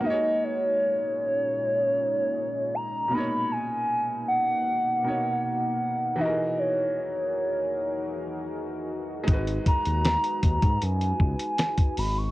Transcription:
Already playing: ambient pad G#3
0.00 grand piano A#3 D#4
0.05 ambient pad A#2 C#4 D#4, grand piano G4, soft synth lead D#5
0.10 grand piano G#4 C#5
0.44 soft synth lead C#5
2.75 soft synth lead A#5
3.08 grand piano B2 A#3
3.13 ambient pad B2 A#3, grand piano D#4, soft synth lead B5
3.18 grand piano C#5
3.52 soft synth lead G#5
4.28 soft synth lead F#5
5.03 grand piano B2 A#3 D#4
5.08 grand piano C#5
5.44 soft synth lead F#5
6.16 grand piano E3 D#4, ambient pad E3 F#4 G#4 A#4
6.21 grand piano F#4 G4, soft synth lead D#5
6.25 grand piano A#4
6.29 grand piano G#4
6.59 soft synth lead C#5
9.23 grand piano G#3 D#4
9.28 analog synth bass G#1, ambient pad G#3 B4, grand piano F#4, kick, closed hi-hat
9.33 grand piano B4
9.47 closed hi-hat
9.66 soft synth lead A#5, kick, closed hi-hat
9.85 analog synth bass D#2, closed hi-hat
10.05 snare, closed hi-hat
10.24 closed hi-hat
10.43 analog synth bass D#2, kick, closed hi-hat
10.62 analog synth bass G#2, kick, closed hi-hat
10.82 analog synth bass F#2, soft synth lead G#5, closed hi-hat
11.01 closed hi-hat
11.20 analog synth bass C#2, kick
11.39 closed hi-hat
11.58 snare, closed hi-hat
11.78 kick, closed hi-hat
11.97 analog synth bass G#1, soft synth lead B5, open hi-hat
12.18 soft synth lead C#6

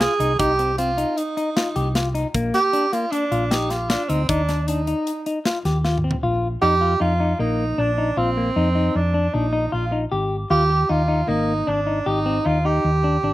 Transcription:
0.00 clean electric guitar F4, tenor saxophone G#4, snare, closed hi-hat
0.20 fingered electric bass C2, clean electric guitar D#4, closed hi-hat
0.39 fingered electric bass C2, clean electric guitar D#4, tenor saxophone G4, kick, closed hi-hat
0.59 clean electric guitar C4, closed hi-hat
0.78 clean electric guitar C4, tenor saxophone F4, closed hi-hat
0.98 clean electric guitar D#4, closed hi-hat
1.17 tenor saxophone D#4, closed hi-hat
1.37 clean electric guitar D#4, closed hi-hat
1.56 clean electric guitar F4, snare, closed hi-hat
1.76 fingered electric bass C2, clean electric guitar G4, closed hi-hat
1.95 clean electric guitar F4, snare, closed hi-hat
2.15 clean electric guitar D#4, closed hi-hat
2.34 fingered electric bass A#1, clean electric guitar A#3, kick, closed hi-hat
2.54 tenor saxophone G4, snare, closed hi-hat
2.73 clean electric guitar D4, closed hi-hat
2.93 clean electric guitar A#3, tenor saxophone F4, closed hi-hat
3.12 tenor saxophone D4, clean electric guitar D4, closed hi-hat
3.32 fingered electric bass A#1, clean electric guitar F4, closed hi-hat
3.51 tenor saxophone D#4, clean electric guitar G4, snare, closed hi-hat
3.70 tenor saxophone F4, snare, closed hi-hat
3.90 tenor saxophone D4, clean electric guitar F4, snare, closed hi-hat
4.09 fingered electric bass D2, tenor saxophone C4, clean electric guitar D#4, closed hi-hat
4.29 fingered electric bass D#2, tenor saxophone D4, clean electric guitar D#4, kick, closed hi-hat
4.49 clean electric guitar D4, snare, closed hi-hat
4.67 clean electric guitar D4, tenor saxophone D#4, closed hi-hat
4.87 clean electric guitar D#4, closed hi-hat
5.07 closed hi-hat
5.26 clean electric guitar D#4, closed hi-hat
5.45 clean electric guitar F4, snare, closed hi-hat
5.65 fingered electric bass D#2, clean electric guitar G4, snare, closed hi-hat
5.85 clean electric guitar F4, snare
5.98 mid tom
6.04 clean electric guitar C4
6.11 floor tom
6.23 fingered electric bass A#1, clean electric guitar F4
6.62 fingered electric bass F2, clean electric guitar D#4, tenor saxophone G4
6.81 clean electric guitar F4
7.00 fingered electric bass F2, clean electric guitar D#4, tenor saxophone F4
7.20 clean electric guitar D#4
7.39 fingered electric bass A#1, clean electric guitar A#3, tenor saxophone D#4
7.78 fingered electric bass A#1, clean electric guitar D4, tenor saxophone D4
7.98 clean electric guitar D#4
8.17 fingered electric bass A#1, tenor saxophone C4, clean electric guitar F4
8.37 clean electric guitar A#3
8.56 fingered electric bass F2, clean electric guitar D#4
8.75 clean electric guitar D#4
8.95 fingered electric bass F2, tenor saxophone D4
9.14 clean electric guitar D4
9.34 fingered electric bass A#1, clean electric guitar D4, tenor saxophone D#4
9.53 clean electric guitar D#4
9.72 fingered electric bass A#1, clean electric guitar F4, tenor saxophone F4
9.92 clean electric guitar D#4
10.12 fingered electric bass G#1, clean electric guitar G4
10.50 fingered electric bass D#2, clean electric guitar F4, tenor saxophone G4
10.70 clean electric guitar G4
10.89 fingered electric bass D#2, clean electric guitar D#4, tenor saxophone F4
11.08 clean electric guitar D#4
11.28 fingered electric bass G#1, clean electric guitar A#3, tenor saxophone D#4
11.67 fingered electric bass G#1, clean electric guitar D4, tenor saxophone D4
11.87 clean electric guitar D#4
12.06 fingered electric bass G#1, tenor saxophone D#4, clean electric guitar G4
12.26 clean electric guitar C4
12.45 fingered electric bass D#2, clean electric guitar D#4, tenor saxophone F4
12.65 clean electric guitar D#4, tenor saxophone G4
12.85 fingered electric bass D#2
13.04 clean electric guitar D4
13.23 fingered electric bass G#1, clean electric guitar D4

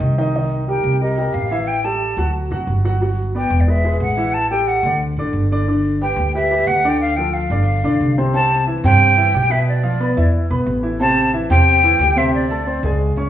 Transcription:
Already playing: grand piano D#3 D#4 D#5
0.00 upright bass C2
0.18 grand piano D#3 D#4 D#5
0.36 grand piano D#3 D#4 D#5
0.68 grand piano G3 G4 A#4, flute G5
0.84 upright bass C2
1.01 grand piano G3 G4 A#4, flute D#5
1.18 grand piano G3 G4 A#4
1.34 upright bass A1, flute F5
1.51 grand piano E3 E4 E5
1.67 flute G5
1.84 grand piano G3 G4 A4, flute A5
2.17 upright bass D2, grand piano F#3 F#4 F#5
2.51 upright bass G#1, grand piano F#3 F#4 F#5
2.67 upright bass G1
2.85 grand piano F#3 F#4 F#5
3.01 grand piano F#3 F#4 F#5
3.35 grand piano B3 B4 D5, flute G5
3.50 upright bass E1
3.60 flute D5
3.67 grand piano G#3 G#4 B4, flute E5
3.84 grand piano G#3 G#4 B4
4.00 upright bass A1, flute F#5
4.17 grand piano E3 E4 E5
4.34 flute A5
4.50 grand piano G3 G4 A4, flute G5
4.67 flute F#5
4.83 upright bass D2, grand piano D3 D4 D5
5.17 upright bass A1, grand piano D3 D4 D5
5.33 upright bass G1
5.52 grand piano D3 D4 D5
5.68 grand piano D3 D4 D5
6.01 grand piano G3 G4 B4, flute G5
6.16 upright bass D2
6.35 grand piano G3 G4 B4, flute E5
6.51 grand piano G3 G4 B4
6.67 upright bass D2, flute F#5
6.84 grand piano D3 D4 D5
6.89 flute G5
7.01 flute F5
7.16 grand piano F3 F4 A4, flute G5
7.33 flute F5
7.50 upright bass G1, grand piano D3 D4 D5
7.83 upright bass B1, grand piano D3 D4 D5
8.01 upright bass C2
8.18 grand piano C3 C4 C5
8.34 grand piano C3 C4 C5, flute A5
8.67 grand piano E3 E4 E5
8.84 upright bass G2, grand piano C3 C4 C5, flute G5
9.17 grand piano E3 E4 E5
9.33 upright bass B1, grand piano G3 G4 G5
9.50 grand piano B2 B3 B4, flute E5
9.68 flute D5
9.83 grand piano F3 F4 F5
10.00 grand piano B3 B4 B5
10.17 upright bass E2, grand piano E3 E4 E5
10.50 upright bass B1, grand piano B3 B4 B5
10.66 upright bass A1
10.83 grand piano E3 E4 E5
11.00 grand piano C3 C4 C5, flute A5
11.33 grand piano E3 E4 E5
11.50 upright bass E2, grand piano C3 C4 C5, flute G5
11.84 grand piano E3 E4 E5
11.99 upright bass D2, grand piano G3 G4 G5
12.16 grand piano C3 C4 C5, flute E5
12.34 flute D5
12.50 grand piano A3 A4 A5
12.67 grand piano C4 C5 C6
12.83 upright bass C#2, grand piano G#3 G#4 G#5
13.16 upright bass C#2, grand piano C#4 C#5 C#6

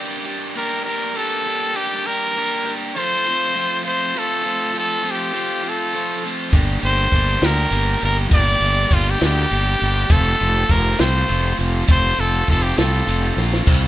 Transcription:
Already playing: overdriven electric guitar A#3 D4
0.00 overdriven electric guitar G4
0.25 overdriven electric guitar D4 G4
0.55 overdriven electric guitar A#3 D4 G4, trumpet A#4
0.85 overdriven electric guitar G4, trumpet A#4
0.89 overdriven electric guitar D4
1.14 overdriven electric guitar A#3 D4 G4, trumpet A4
1.47 overdriven electric guitar D4 G4
1.75 overdriven electric guitar A#3 D4 G4, trumpet G4
2.06 overdriven electric guitar D4 G4, trumpet A#4
2.36 overdriven electric guitar A#3 D4 G4
2.65 overdriven electric guitar D4 G4
2.95 overdriven electric guitar F3 A3 C4 F4, trumpet C5
3.26 overdriven electric guitar A3 C4 F4
3.55 overdriven electric guitar F3 A3 C4 F4
3.84 overdriven electric guitar A3 C4 F4, trumpet C5
4.15 overdriven electric guitar F3 A3 C4 F4, trumpet A4
4.43 overdriven electric guitar A3 C4 F4
4.73 overdriven electric guitar F3 A3 C4 F4
4.79 trumpet A4
5.03 overdriven electric guitar A3 C4 F4
5.11 trumpet G4
5.33 overdriven electric guitar F3 A3 C4 F4
5.63 overdriven electric guitar A3 C4 F4
5.69 trumpet A4
5.93 overdriven electric guitar F3 A3 C4 F4
6.24 overdriven electric guitar A3 C4 F4
6.53 fingered electric bass G1, overdriven electric guitar A#3 D4 G4, kick, closed hi-hat
6.82 fingered electric bass G1, overdriven electric guitar D4 G4, trumpet C5, closed hi-hat
7.12 fingered electric bass G1, overdriven electric guitar A#3 D4 G4, kick, closed hi-hat
7.42 fingered electric bass D2, overdriven electric guitar G4, trumpet A#4, snare, closed hi-hat
7.46 overdriven electric guitar D4
7.71 fingered electric bass G1, overdriven electric guitar A#3 D4 G4, closed hi-hat
8.01 fingered electric bass G1, overdriven electric guitar D4 G4, trumpet A#4, closed hi-hat
8.31 fingered electric bass G1, overdriven electric guitar A#3 D4 G4, trumpet D5, kick, closed hi-hat
8.60 fingered electric bass G1, overdriven electric guitar D4 G4, closed hi-hat
8.90 fingered electric bass G1, overdriven electric guitar A#3 D4 G4, trumpet F4, kick, closed hi-hat
9.10 trumpet G4
9.21 fingered electric bass D2, overdriven electric guitar D4 G4, snare, closed hi-hat
9.25 trumpet G4
9.51 fingered electric bass G1, overdriven electric guitar A#3 D4 G4, closed hi-hat
9.80 fingered electric bass G1, overdriven electric guitar D4 G4, closed hi-hat
10.10 fingered electric bass F1, overdriven electric guitar A3 C4 F4, trumpet A4, kick, closed hi-hat
10.40 fingered electric bass F1, overdriven electric guitar C4 F4, closed hi-hat
10.68 fingered electric bass F1, overdriven electric guitar A3 C4 F4, trumpet A#4, kick, closed hi-hat
10.98 fingered electric bass C2, overdriven electric guitar C4 F4, trumpet C5, snare, closed hi-hat
11.28 fingered electric bass F1, overdriven electric guitar A3 C4 F4, closed hi-hat
11.58 fingered electric bass F1, overdriven electric guitar C4 F4, closed hi-hat
11.88 fingered electric bass F1, overdriven electric guitar A3 C4 F4, kick, closed hi-hat
11.92 trumpet C5
12.18 fingered electric bass F1, overdriven electric guitar F4, trumpet A4, closed hi-hat
12.22 overdriven electric guitar C4
12.48 fingered electric bass F1, overdriven electric guitar A3 C4, trumpet A4, kick, closed hi-hat
12.52 overdriven electric guitar F4
12.63 trumpet G4
12.78 fingered electric bass C2, overdriven electric guitar C4 F4, trumpet A4, snare, closed hi-hat
13.07 fingered electric bass F1, overdriven electric guitar A3 C4 F4, closed hi-hat
13.37 fingered electric bass A#1, overdriven electric guitar F4, snare
13.41 overdriven electric guitar C4
13.53 snare
13.67 fingered electric bass C2, overdriven electric guitar G3 C4 F4, kick, crash

